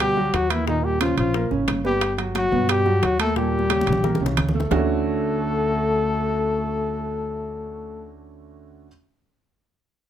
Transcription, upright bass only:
Already playing: D2
0.33 D#2
1.17 A#1
1.51 A1
1.68 G1
2.52 G2
3.02 D#2
3.87 A#1
4.20 C2
4.37 D2
4.71 D2

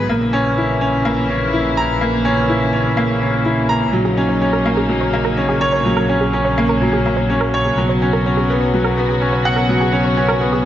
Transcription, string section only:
0.09 C#3 E3 A#3 E4
3.94 F#3 D#4
5.85 C#4
7.78 B3 F#4

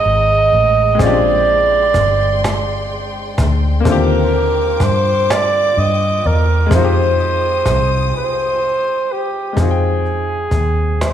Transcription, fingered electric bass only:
0.06 G#1
0.53 A1
1.00 A#1
1.95 G1
3.39 D2
3.86 D#2
4.81 G2
5.77 G2
6.26 E2
6.72 F2
7.67 C2
9.58 F2
10.52 D#2

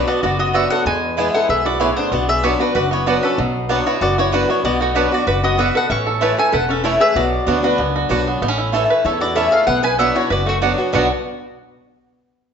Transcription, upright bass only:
0.23 F#1
0.86 E2
1.49 B1
2.11 B1
2.75 F#1
3.38 B1
4.01 F#1
4.64 B1
5.27 F#1
5.90 A1
6.53 E1
7.15 B1
7.47 D2
7.79 C#2
8.10 B1
8.42 A1
9.05 E2
9.67 B1
10.30 F#1
10.93 B1

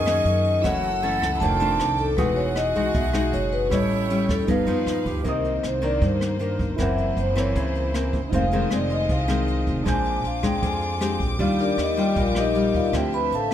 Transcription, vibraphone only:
0.06 D#5
0.45 D#5
0.64 F#5
1.40 A5
1.60 A5
1.99 A4
2.17 B4
2.36 C#5
2.56 D#5
2.95 E5
3.33 C#5
3.53 B4
3.72 C#5
4.30 A4
4.49 B4
5.28 D#5
5.67 C5
5.85 D5
6.04 C5
6.81 E5
7.20 C5
7.38 C#5
7.59 C5
8.35 F5
8.73 D5
8.92 D#5
9.12 F5
9.89 G#5
10.27 F5
10.46 G5
10.66 G#5
11.61 D4 G4 A#4 D5
11.81 D#4 G4 A#4 D#5
11.99 G4 D5 D#5 G5
12.19 F4 A#4 D5 F5
12.38 D#4 G4 A#4 D#5
12.76 F4 A#4 D5 F5
12.96 G4 G5
13.14 B4 B5
13.35 A4 E5 F5 A5

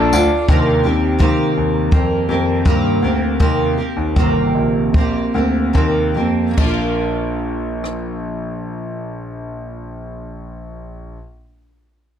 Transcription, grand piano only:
0.13 D2
0.49 D#2
0.85 D#2
1.20 D#3
1.57 D#2
1.92 F2
2.29 F2
2.66 G2
3.02 D2
3.40 D#2
3.96 D#2
4.16 G1
4.55 A#1
5.34 D2
5.75 D#2
6.15 F2
6.58 A#1

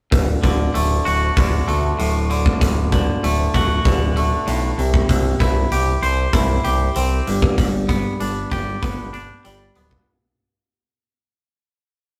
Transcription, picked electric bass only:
0.12 D1
0.44 D1
0.75 D1
1.06 D1
1.37 D1
1.68 D2
1.99 D1
2.61 D1
3.23 D1
3.55 D1
3.85 D1
4.47 B1
4.78 C2
5.09 C2
5.40 C2
5.71 C2
6.02 C2
6.34 C2
6.65 C2
6.96 C2
7.27 G1
7.58 G1
8.21 G1
8.51 G1
8.83 G1
9.46 G1
9.76 D1

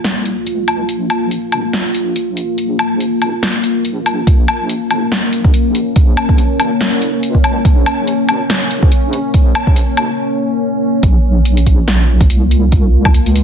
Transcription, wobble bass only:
0.04 C2
0.47 C#2
0.89 A#1
1.95 A#1
2.58 A#1
3.85 A#1
4.27 A#1
5.33 A#1
5.96 A#1
6.55 A1
6.80 C2
7.23 C#2
7.65 A#1
8.24 A1
8.71 A#1
9.34 A#1
11.03 A#1
12.30 C2
13.14 C#2

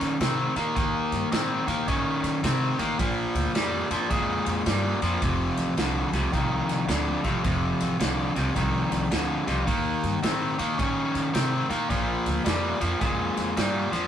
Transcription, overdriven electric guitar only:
Already playing: D#3 C#4
0.21 D#3 C4
0.56 D#3 A#3
0.75 D#3 A#3
1.32 D#3 C4
1.66 D#3 A#3
1.88 D#3 C#4
2.43 D#3 C4
2.79 D#3 A#3
2.99 A#2 F3
3.55 A#2 G3
3.91 A#2 F3
4.10 A#2 G#3
4.66 A#2 G3
5.02 A#2 F3
5.22 F2 C3
5.77 F2 D3
6.13 F2 C3
6.32 F2 D#3
6.88 F2 D3
7.24 F2 C3
7.44 F2 C3
7.99 F2 D3
8.35 F2 C3
8.55 F2 D#3
9.11 F2 D3
9.46 F2 C3
9.66 D#3 A#3
10.23 D#3 C4
10.58 D#3 A#3
10.78 D#3 C#4
11.33 D#3 C4
11.69 D#3 A#3
11.90 A#2 F3
12.45 A#2 G3
12.80 A#2 F3
13.01 A#2 G#3
13.57 A#2 G3
13.92 A#2 F3

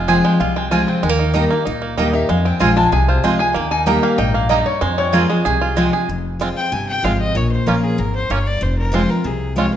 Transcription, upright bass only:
Already playing: F1
0.40 C2
1.03 D#2
1.67 C#2
1.98 D#2
2.29 F2
2.61 A#1
2.92 C2
3.24 C#2
3.55 D#2
4.18 A#1
4.82 F2
5.46 C2
6.09 F1
6.72 G1
7.04 G#1
7.35 A#1
7.67 A#1
7.99 G#1
8.30 G1
8.62 F1
9.25 C2

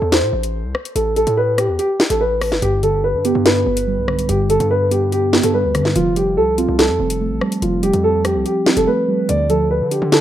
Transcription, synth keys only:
2.62 G2
2.83 D3
3.25 B3
3.67 B3
3.87 G3
4.08 D3
4.29 G2
4.50 D3
4.91 B3
5.33 B3
5.54 G3
5.75 D3
5.96 F3
6.17 G3
6.58 C4
7.00 C4
7.21 A3
7.41 G3
7.62 F3
7.83 G3
8.25 C4
8.66 C4
8.87 A3
9.08 G3
9.29 D3
9.50 F3
9.91 D4

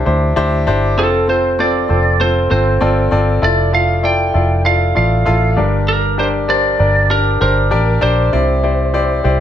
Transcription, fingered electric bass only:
0.06 D2
0.37 D2
0.67 G1
0.98 F1
1.90 F1
2.51 G1
2.82 G1
3.12 G1
3.42 F1
4.35 F1
4.97 A1
5.27 A1
5.57 G1
6.80 G1
7.41 G1
7.72 A1
8.02 A#1
8.33 C2
9.25 C2

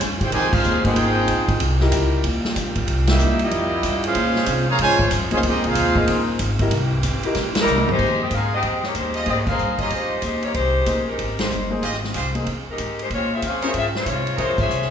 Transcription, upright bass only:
0.00 G2
0.12 F2
0.24 C#2
0.33 F2
0.53 muted upright bass stroke
0.65 D#2
0.85 muted upright bass stroke
0.97 G#1
1.28 A#1
1.60 C2
1.92 C#2
2.24 D#2
2.56 A#1
2.87 C2
3.20 D#2
3.51 F2
3.83 G2
4.16 A#2
4.47 C3
4.79 G#2
5.11 G2
5.22 F2
5.32 C#2
5.43 F2
5.54 D#2
5.65 C2
5.75 D#2
6.07 A#1
6.39 G#1
6.71 C2
7.03 G#1
7.24 muted upright bass stroke
7.36 A#1
7.55 muted upright bass stroke
7.66 C2
7.99 F2
8.31 G#2
8.63 F2
8.95 D#2
9.27 G#2
9.58 G2
9.90 F2
10.22 D#2
10.55 C2
10.86 A#1
11.18 G#1
11.51 G1
11.82 G#1
12.15 C2
12.47 F2
12.68 muted upright bass stroke
12.79 G#2
13.11 A#2
13.42 F2
13.74 G#2
14.06 C3
14.38 F2
14.69 C2

